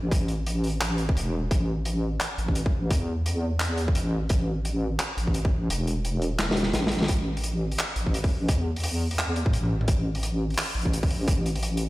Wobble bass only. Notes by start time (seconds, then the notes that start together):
Already playing: A1
0.11 A1
1.16 E1
1.51 A1
2.38 A1
2.90 E2
3.95 A1
4.30 A1
5.17 A1
5.69 E1
6.74 A1
7.09 A1
7.96 A1
8.49 E2
9.53 A1
9.88 A1
10.75 A1
11.28 A1